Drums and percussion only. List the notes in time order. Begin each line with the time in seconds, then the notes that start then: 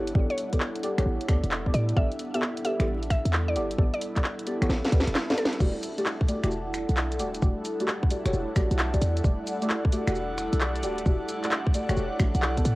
0.07 closed hi-hat
0.15 kick
0.30 closed hi-hat
0.38 open hi-hat
0.53 kick, closed hi-hat
0.60 clap
0.75 closed hi-hat
0.83 open hi-hat
0.98 finger snap, closed hi-hat
1.21 closed hi-hat
1.28 finger snap, kick, open hi-hat
1.44 closed hi-hat
1.51 clap
1.66 kick
1.74 open hi-hat
1.89 open hi-hat
1.97 kick
2.12 closed hi-hat
2.19 open hi-hat
2.34 closed hi-hat
2.42 clap
2.57 closed hi-hat
2.65 open hi-hat
2.80 finger snap, closed hi-hat
3.03 open hi-hat
3.10 finger snap, kick, open hi-hat
3.25 closed hi-hat
3.33 clap
3.56 open hi-hat
3.71 closed hi-hat
3.78 kick
3.94 closed hi-hat
4.01 open hi-hat
4.16 kick, clap, closed hi-hat
4.24 clap
4.39 closed hi-hat
4.47 open hi-hat
4.62 finger snap, closed hi-hat
4.69 snare
4.84 snare, closed hi-hat
4.92 kick, open hi-hat
5.00 snare
5.07 closed hi-hat
5.15 snare, clap
5.30 snare, closed hi-hat
5.38 open hi-hat
5.45 snare
5.53 open hi-hat
5.60 kick, crash, shaker
5.83 open hi-hat, shaker
5.98 closed hi-hat, shaker
6.06 clap, shaker
6.21 kick
6.28 open hi-hat, shaker
6.44 finger snap, closed hi-hat, shaker
6.51 shaker
6.74 finger snap, open hi-hat, shaker
6.89 closed hi-hat, shaker
6.97 clap, shaker
7.12 closed hi-hat, shaker
7.19 open hi-hat, shaker
7.35 closed hi-hat, shaker
7.42 kick, shaker
7.65 open hi-hat, shaker
7.80 closed hi-hat, shaker
7.88 clap, shaker
8.03 kick
8.10 open hi-hat, shaker
8.26 finger snap, closed hi-hat, shaker
8.33 shaker
8.56 finger snap, kick, open hi-hat, shaker
8.71 closed hi-hat, shaker
8.79 clap, shaker
8.94 kick, closed hi-hat, shaker
9.02 open hi-hat, shaker
9.17 closed hi-hat, shaker
9.24 kick, shaker
9.47 open hi-hat, shaker
9.62 closed hi-hat, shaker
9.70 clap, shaker
9.85 kick
9.92 open hi-hat, shaker
10.07 finger snap, closed hi-hat, shaker
10.15 shaker
10.38 finger snap, open hi-hat, shaker
10.53 closed hi-hat, shaker
10.61 clap, shaker
10.76 closed hi-hat, shaker
10.83 open hi-hat, shaker
10.98 closed hi-hat, shaker
11.06 kick, shaker
11.29 open hi-hat, shaker
11.44 clap, closed hi-hat, shaker
11.51 clap, shaker
11.67 kick
11.74 open hi-hat, shaker
11.89 finger snap, closed hi-hat, shaker
11.97 shaker
12.20 finger snap, kick, open hi-hat, shaker
12.35 closed hi-hat, shaker
12.42 clap, shaker
12.57 kick, closed hi-hat, shaker
12.65 open hi-hat, shaker